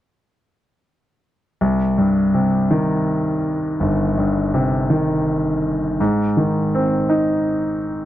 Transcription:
1.61 C2
1.98 G2
2.34 C3
2.71 D#3
3.80 G1
4.18 G2
4.54 C3
4.90 D#3
6.00 G#2
6.37 D#3
6.75 C4
7.09 D#4

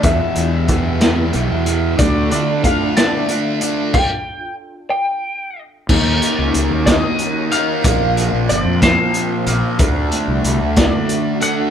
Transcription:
0.02 E2 B2 E3 B3 E4 G4 E5, kick, closed hi-hat
0.35 E2 B2 E3, closed hi-hat
0.68 E2 B2 E3, kick, closed hi-hat
1.00 B2 E3, snare, closed hi-hat
1.33 B1 E2 B2 E3, closed hi-hat
1.50 E2
1.65 B2 E3, closed hi-hat
1.97 D2 D3 A3 D4 F4 A4 D5, kick, closed hi-hat
2.30 D3 A3 D4 D5, closed hi-hat
2.63 D3 A3 D4 F5, kick, closed hi-hat
2.96 A3 D4 D5, snare, closed hi-hat
3.28 D3 A3 D4, closed hi-hat
3.61 A3 D4, closed hi-hat
3.94 G5, kick, crash
4.90 G5
5.89 D#2 D#3 A#3 C#4 D#4 F#4, kick, crash
6.22 closed hi-hat
6.39 C#2
6.54 C#2, closed hi-hat
6.70 D#2
6.86 D#5, kick, snare, closed hi-hat
7.19 closed hi-hat
7.51 D#3 A#3 D#4 F5, closed hi-hat
7.83 A#1 A#2 F3 A#3 C4 F4, kick, closed hi-hat
8.17 closed hi-hat
8.33 A#1
8.49 G1 D5, closed hi-hat
8.65 F2
8.82 C5, kick, snare, closed hi-hat
9.14 closed hi-hat
9.46 A#1 A#2 F3 A#3, closed hi-hat
9.79 D2 D3 A3 D4 F#4, kick, closed hi-hat
10.12 closed hi-hat
10.28 C2
10.45 C2, closed hi-hat
10.60 D2
10.76 D5, kick, snare, closed hi-hat
11.09 closed hi-hat
11.41 D3 A3 D4 F#5, closed hi-hat

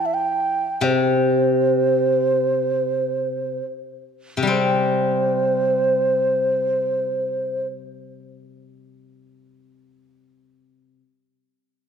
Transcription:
Already playing: E3
0.06 E5
0.14 G5
0.81 C3 C5
4.37 C3
4.43 G3
4.47 C4 C5

